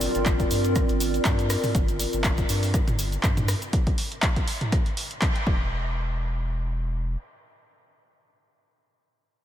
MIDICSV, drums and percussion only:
0, 0, Header, 1, 2, 480
1, 0, Start_track
1, 0, Tempo, 495868
1, 1692, Time_signature, 4, 2, 24, 8
1, 9144, End_track
2, 0, Start_track
2, 0, Title_t, "Drums"
2, 9, Note_on_c, 9, 69, 87
2, 11, Note_on_c, 9, 46, 105
2, 106, Note_off_c, 9, 69, 0
2, 108, Note_off_c, 9, 46, 0
2, 142, Note_on_c, 9, 69, 40
2, 144, Note_on_c, 9, 42, 41
2, 239, Note_off_c, 9, 69, 0
2, 241, Note_off_c, 9, 42, 0
2, 248, Note_on_c, 9, 39, 115
2, 251, Note_on_c, 9, 42, 95
2, 252, Note_on_c, 9, 36, 119
2, 256, Note_on_c, 9, 69, 52
2, 345, Note_off_c, 9, 39, 0
2, 348, Note_off_c, 9, 42, 0
2, 349, Note_off_c, 9, 36, 0
2, 353, Note_off_c, 9, 69, 0
2, 382, Note_on_c, 9, 69, 25
2, 384, Note_on_c, 9, 36, 60
2, 384, Note_on_c, 9, 42, 39
2, 479, Note_off_c, 9, 69, 0
2, 481, Note_off_c, 9, 36, 0
2, 481, Note_off_c, 9, 42, 0
2, 492, Note_on_c, 9, 46, 103
2, 492, Note_on_c, 9, 69, 83
2, 588, Note_off_c, 9, 46, 0
2, 589, Note_off_c, 9, 69, 0
2, 623, Note_on_c, 9, 69, 41
2, 625, Note_on_c, 9, 42, 41
2, 720, Note_off_c, 9, 69, 0
2, 722, Note_off_c, 9, 42, 0
2, 730, Note_on_c, 9, 69, 52
2, 732, Note_on_c, 9, 36, 122
2, 732, Note_on_c, 9, 37, 67
2, 732, Note_on_c, 9, 42, 94
2, 827, Note_off_c, 9, 69, 0
2, 829, Note_off_c, 9, 36, 0
2, 829, Note_off_c, 9, 37, 0
2, 829, Note_off_c, 9, 42, 0
2, 859, Note_on_c, 9, 69, 26
2, 865, Note_on_c, 9, 42, 39
2, 956, Note_off_c, 9, 69, 0
2, 961, Note_off_c, 9, 42, 0
2, 972, Note_on_c, 9, 46, 105
2, 977, Note_on_c, 9, 69, 97
2, 1069, Note_off_c, 9, 46, 0
2, 1074, Note_off_c, 9, 69, 0
2, 1105, Note_on_c, 9, 42, 41
2, 1111, Note_on_c, 9, 69, 36
2, 1201, Note_off_c, 9, 42, 0
2, 1208, Note_off_c, 9, 69, 0
2, 1208, Note_on_c, 9, 39, 119
2, 1212, Note_on_c, 9, 36, 113
2, 1212, Note_on_c, 9, 42, 93
2, 1214, Note_on_c, 9, 69, 53
2, 1305, Note_off_c, 9, 39, 0
2, 1309, Note_off_c, 9, 36, 0
2, 1309, Note_off_c, 9, 42, 0
2, 1310, Note_off_c, 9, 69, 0
2, 1344, Note_on_c, 9, 42, 41
2, 1351, Note_on_c, 9, 69, 26
2, 1441, Note_off_c, 9, 42, 0
2, 1448, Note_off_c, 9, 69, 0
2, 1452, Note_on_c, 9, 37, 80
2, 1452, Note_on_c, 9, 46, 99
2, 1452, Note_on_c, 9, 69, 90
2, 1548, Note_off_c, 9, 37, 0
2, 1548, Note_off_c, 9, 46, 0
2, 1548, Note_off_c, 9, 69, 0
2, 1583, Note_on_c, 9, 69, 40
2, 1584, Note_on_c, 9, 45, 88
2, 1584, Note_on_c, 9, 46, 60
2, 1680, Note_off_c, 9, 69, 0
2, 1681, Note_off_c, 9, 45, 0
2, 1681, Note_off_c, 9, 46, 0
2, 1691, Note_on_c, 9, 42, 100
2, 1692, Note_on_c, 9, 36, 118
2, 1699, Note_on_c, 9, 69, 54
2, 1788, Note_off_c, 9, 42, 0
2, 1789, Note_off_c, 9, 36, 0
2, 1796, Note_off_c, 9, 69, 0
2, 1824, Note_on_c, 9, 42, 42
2, 1825, Note_on_c, 9, 69, 23
2, 1921, Note_off_c, 9, 42, 0
2, 1922, Note_off_c, 9, 69, 0
2, 1931, Note_on_c, 9, 46, 104
2, 1936, Note_on_c, 9, 69, 88
2, 2028, Note_off_c, 9, 46, 0
2, 2033, Note_off_c, 9, 69, 0
2, 2060, Note_on_c, 9, 69, 42
2, 2064, Note_on_c, 9, 42, 43
2, 2157, Note_off_c, 9, 69, 0
2, 2160, Note_off_c, 9, 42, 0
2, 2168, Note_on_c, 9, 39, 118
2, 2170, Note_on_c, 9, 69, 50
2, 2171, Note_on_c, 9, 42, 98
2, 2172, Note_on_c, 9, 36, 121
2, 2265, Note_off_c, 9, 39, 0
2, 2266, Note_off_c, 9, 69, 0
2, 2268, Note_off_c, 9, 42, 0
2, 2269, Note_off_c, 9, 36, 0
2, 2299, Note_on_c, 9, 69, 25
2, 2304, Note_on_c, 9, 36, 60
2, 2304, Note_on_c, 9, 42, 40
2, 2396, Note_off_c, 9, 69, 0
2, 2401, Note_off_c, 9, 36, 0
2, 2401, Note_off_c, 9, 42, 0
2, 2411, Note_on_c, 9, 46, 108
2, 2413, Note_on_c, 9, 69, 83
2, 2508, Note_off_c, 9, 46, 0
2, 2509, Note_off_c, 9, 69, 0
2, 2544, Note_on_c, 9, 46, 60
2, 2549, Note_on_c, 9, 69, 35
2, 2641, Note_off_c, 9, 46, 0
2, 2646, Note_off_c, 9, 69, 0
2, 2651, Note_on_c, 9, 37, 67
2, 2651, Note_on_c, 9, 42, 100
2, 2652, Note_on_c, 9, 36, 123
2, 2659, Note_on_c, 9, 69, 49
2, 2748, Note_off_c, 9, 37, 0
2, 2748, Note_off_c, 9, 42, 0
2, 2749, Note_off_c, 9, 36, 0
2, 2756, Note_off_c, 9, 69, 0
2, 2784, Note_on_c, 9, 42, 40
2, 2784, Note_on_c, 9, 45, 97
2, 2784, Note_on_c, 9, 69, 28
2, 2881, Note_off_c, 9, 42, 0
2, 2881, Note_off_c, 9, 45, 0
2, 2881, Note_off_c, 9, 69, 0
2, 2892, Note_on_c, 9, 46, 99
2, 2894, Note_on_c, 9, 69, 95
2, 2988, Note_off_c, 9, 46, 0
2, 2991, Note_off_c, 9, 69, 0
2, 3024, Note_on_c, 9, 42, 43
2, 3030, Note_on_c, 9, 69, 36
2, 3120, Note_off_c, 9, 42, 0
2, 3127, Note_off_c, 9, 69, 0
2, 3129, Note_on_c, 9, 39, 113
2, 3132, Note_on_c, 9, 36, 111
2, 3132, Note_on_c, 9, 42, 94
2, 3140, Note_on_c, 9, 69, 49
2, 3226, Note_off_c, 9, 39, 0
2, 3229, Note_off_c, 9, 36, 0
2, 3229, Note_off_c, 9, 42, 0
2, 3237, Note_off_c, 9, 69, 0
2, 3264, Note_on_c, 9, 42, 42
2, 3264, Note_on_c, 9, 45, 102
2, 3266, Note_on_c, 9, 69, 28
2, 3361, Note_off_c, 9, 42, 0
2, 3361, Note_off_c, 9, 45, 0
2, 3362, Note_off_c, 9, 69, 0
2, 3372, Note_on_c, 9, 37, 85
2, 3372, Note_on_c, 9, 46, 101
2, 3373, Note_on_c, 9, 69, 91
2, 3469, Note_off_c, 9, 37, 0
2, 3469, Note_off_c, 9, 46, 0
2, 3470, Note_off_c, 9, 69, 0
2, 3504, Note_on_c, 9, 69, 36
2, 3505, Note_on_c, 9, 42, 37
2, 3601, Note_off_c, 9, 42, 0
2, 3601, Note_off_c, 9, 69, 0
2, 3612, Note_on_c, 9, 36, 118
2, 3612, Note_on_c, 9, 42, 102
2, 3709, Note_off_c, 9, 36, 0
2, 3709, Note_off_c, 9, 42, 0
2, 3745, Note_on_c, 9, 36, 78
2, 3745, Note_on_c, 9, 42, 42
2, 3841, Note_off_c, 9, 36, 0
2, 3842, Note_off_c, 9, 42, 0
2, 3852, Note_on_c, 9, 46, 106
2, 3949, Note_off_c, 9, 46, 0
2, 3985, Note_on_c, 9, 42, 42
2, 4082, Note_off_c, 9, 42, 0
2, 4089, Note_on_c, 9, 39, 125
2, 4092, Note_on_c, 9, 36, 122
2, 4092, Note_on_c, 9, 42, 97
2, 4186, Note_off_c, 9, 39, 0
2, 4189, Note_off_c, 9, 36, 0
2, 4189, Note_off_c, 9, 42, 0
2, 4224, Note_on_c, 9, 42, 42
2, 4225, Note_on_c, 9, 36, 60
2, 4321, Note_off_c, 9, 42, 0
2, 4322, Note_off_c, 9, 36, 0
2, 4332, Note_on_c, 9, 46, 106
2, 4429, Note_off_c, 9, 46, 0
2, 4464, Note_on_c, 9, 42, 43
2, 4464, Note_on_c, 9, 45, 88
2, 4561, Note_off_c, 9, 42, 0
2, 4561, Note_off_c, 9, 45, 0
2, 4572, Note_on_c, 9, 36, 123
2, 4572, Note_on_c, 9, 37, 66
2, 4572, Note_on_c, 9, 42, 102
2, 4669, Note_off_c, 9, 36, 0
2, 4669, Note_off_c, 9, 37, 0
2, 4669, Note_off_c, 9, 42, 0
2, 4705, Note_on_c, 9, 42, 43
2, 4802, Note_off_c, 9, 42, 0
2, 4812, Note_on_c, 9, 46, 104
2, 4909, Note_off_c, 9, 46, 0
2, 4945, Note_on_c, 9, 42, 42
2, 5042, Note_off_c, 9, 42, 0
2, 5049, Note_on_c, 9, 39, 121
2, 5052, Note_on_c, 9, 36, 120
2, 5052, Note_on_c, 9, 42, 100
2, 5146, Note_off_c, 9, 39, 0
2, 5149, Note_off_c, 9, 36, 0
2, 5149, Note_off_c, 9, 42, 0
2, 5185, Note_on_c, 9, 42, 43
2, 5282, Note_off_c, 9, 42, 0
2, 5292, Note_on_c, 9, 36, 116
2, 5389, Note_off_c, 9, 36, 0
2, 9144, End_track
0, 0, End_of_file